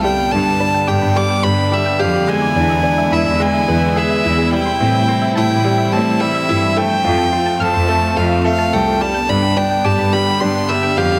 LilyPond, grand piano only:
\new Staff \with { instrumentName = "Grand piano" } { \time 4/4 \key g \mixolydian \tempo 4 = 107 g8 d'8 d'8 g'8 g8 d'8 g8 g'8 | gis8 d'8 d'8 e'8 gis8 b8 gis'8 e'8 | g8 c'8 c'8 e'8 g8 c'8 g8 e'8 | a8 f'8 f'8 a'8 a8 f'8 a8 a'8 |
g8 d'8 d'8 g'8 g8 d'8 g8 g'8 | }